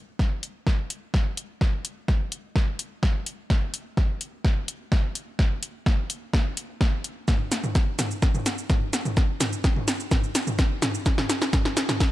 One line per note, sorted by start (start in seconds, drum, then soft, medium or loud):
0.19 kick loud
0.19 snare soft
0.43 closed hi-hat medium
0.67 kick loud
0.67 snare medium
0.90 closed hi-hat medium
1.14 kick loud
1.14 snare medium
1.37 closed hi-hat medium
1.61 kick loud
1.61 snare soft
1.85 closed hi-hat loud
2.08 kick loud
2.08 snare medium
2.32 closed hi-hat medium
2.56 kick loud
2.56 snare medium
2.79 closed hi-hat loud
3.03 kick loud
3.03 snare medium
3.26 closed hi-hat medium
3.50 kick loud
3.50 snare medium
3.74 closed hi-hat loud
3.97 kick loud
3.97 snare medium
4.21 closed hi-hat medium
4.45 kick loud
4.45 snare medium
4.68 closed hi-hat loud
4.92 kick loud
4.92 snare medium
5.15 closed hi-hat medium
5.39 kick loud
5.39 snare medium
5.63 closed hi-hat loud
5.86 kick loud
5.86 snare medium
6.10 closed hi-hat medium
6.33 kick loud
6.33 snare medium
6.57 closed hi-hat loud
6.81 kick loud
6.81 snare medium
7.04 closed hi-hat medium
7.28 kick loud
7.28 snare medium
7.28 mid tom medium
7.28 shaker soft
7.52 snare medium
7.52 closed hi-hat loud
7.52 shaker medium
7.64 mid tom medium
7.64 shaker soft
7.75 kick loud
7.75 snare medium
7.75 shaker soft
7.99 snare medium
7.99 closed hi-hat medium
7.99 mid tom medium
7.99 shaker medium
8.11 shaker soft
8.22 kick loud
8.22 snare medium
8.22 shaker soft
8.35 mid tom loud
8.35 shaker soft
8.46 snare medium
8.46 closed hi-hat loud
8.46 shaker medium
8.58 shaker soft
8.70 kick loud
8.70 snare medium
8.70 mid tom loud
8.70 shaker soft
8.93 snare medium
8.93 closed hi-hat medium
8.93 shaker medium
9.05 mid tom loud
9.05 shaker soft
9.17 kick loud
9.17 snare medium
9.17 shaker soft
9.40 snare medium
9.40 closed hi-hat loud
9.40 mid tom medium
9.40 shaker medium
9.53 shaker soft
9.64 kick loud
9.64 snare medium
9.64 shaker soft
9.76 mid tom loud
9.88 snare medium
9.88 closed hi-hat medium
9.88 shaker medium
10.00 shaker soft
10.11 kick loud
10.11 snare medium
10.11 mid tom loud
10.11 shaker soft
10.24 shaker soft
10.35 snare medium
10.35 closed hi-hat loud
10.35 shaker medium
10.47 mid tom loud
10.47 shaker soft
10.59 kick loud
10.59 snare medium
10.59 shaker soft
10.82 snare medium
10.82 closed hi-hat medium
10.82 mid tom medium
10.82 shaker medium
10.94 shaker soft
11.06 kick loud
11.06 snare medium
11.06 shaker soft
11.18 snare medium
11.18 mid tom medium
11.30 snare medium
11.30 closed hi-hat loud
11.30 shaker medium
11.42 snare medium
11.42 shaker soft
11.53 kick loud
11.53 snare loud
11.53 mid tom loud
11.53 shaker soft
11.65 snare medium
11.77 snare medium
11.77 closed hi-hat medium
11.77 shaker medium
11.89 snare medium
11.89 mid tom medium
11.89 shaker soft
12.00 kick loud
12.00 snare loud
12.00 shaker soft